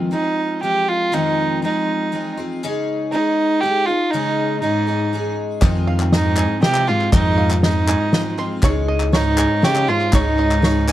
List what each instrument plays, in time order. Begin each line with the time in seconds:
Already playing: twelve-string acoustic guitar F2 D#3 G#3 C4 F4
0.11 twelve-string acoustic guitar F3 G#3 C4 F4, fiddle D#4
0.63 twelve-string acoustic guitar F3 G#3 C4 F4, fiddle G4
0.88 fiddle F4
1.12 twelve-string acoustic guitar F2 D#3 F3 G#3 C4 F4, fiddle D#4
1.62 twelve-string acoustic guitar F3 G#3 C4 F4, fiddle D#4
2.12 twelve-string acoustic guitar F3 G#3 C4 F4
2.37 twelve-string acoustic guitar F3 G#3 C4 F4
2.63 twelve-string acoustic guitar C#3 G#3 C#4 D#4 G#4
3.12 twelve-string acoustic guitar G#3 C#4 D#4 G#4, fiddle D#4
3.60 twelve-string acoustic guitar G#3 C#4, fiddle G4
3.64 twelve-string acoustic guitar D#4 G#4
3.86 twelve-string acoustic guitar D#4 G#4, fiddle F4
3.90 twelve-string acoustic guitar C#4
4.11 twelve-string acoustic guitar C#3 G#3 C#4 D#4, fiddle D#4
4.15 twelve-string acoustic guitar G#4
4.60 cello G#2, twelve-string acoustic guitar G#3 C#4 D#4 G#4, fiddle D#4
4.87 twelve-string acoustic guitar C#4 D#4 G#4
5.13 twelve-string acoustic guitar G#3 C#4 D#4 G#4
5.62 fingered electric bass F2, twelve-string acoustic guitar F2 D#3 F3 G#3 C4 F4, five-string banjo D#5, kick, clap, ride
5.87 five-string banjo F5
6.00 clap
6.12 cello G#2, twelve-string acoustic guitar F3 G#3 C4 F4, fiddle D#4, five-string banjo D#5, snare, ride
6.37 five-string banjo G#5, clap
6.62 cello C3, twelve-string acoustic guitar F3 G#3 C4 F4, fiddle G4, five-string banjo D#5, snare, ride
6.75 clap
6.87 cello G#2, twelve-string acoustic guitar F3 G#3 C4 F4, fiddle F4, five-string banjo C6, clap
7.01 clap
7.12 twelve-string acoustic guitar F2 D#3 F3 G#3 C4 F4, fingered electric bass F2, cello G#2, fiddle D#4, five-string banjo D#5, kick, clap, ride
7.38 five-string banjo F5
7.50 clap
7.63 cello G#2, twelve-string acoustic guitar F3 G#3 C4 F4, fiddle D#4, five-string banjo D#5, snare, ride
7.88 five-string banjo G#5, clap
8.13 twelve-string acoustic guitar F3 G#3 C4 F4, five-string banjo D#5, snare, ride
8.38 twelve-string acoustic guitar F3 G#3 C4 F4, five-string banjo C6, clap
8.63 fingered electric bass C#2, twelve-string acoustic guitar C#3 G#3 C#4 D#4 G#4, five-string banjo C#5, kick, clap, ride
8.88 five-string banjo D#5
9.00 clap
9.13 cello G#2, twelve-string acoustic guitar G#3 C#4 D#4 G#4, fiddle D#4, five-string banjo C#5, snare, ride
9.38 five-string banjo G#5, clap
9.62 cello C#3, twelve-string acoustic guitar G#3 C#4 D#4 G#4, fiddle G4, five-string banjo C#5, snare, ride
9.75 clap
9.88 cello G#2, twelve-string acoustic guitar C#4 D#4 G#4, fiddle F4, five-string banjo C6, clap
10.01 clap
10.13 fingered electric bass C#2, cello G#2, twelve-string acoustic guitar C#3 G#3 C#4 D#4 G#4, fiddle D#4, five-string banjo C#5, kick, clap, ride
10.39 five-string banjo D#5, clap
10.51 clap
10.62 twelve-string acoustic guitar G#3 C#4 D#4 G#4, five-string banjo C#5, snare, ride
10.89 five-string banjo G#5, clap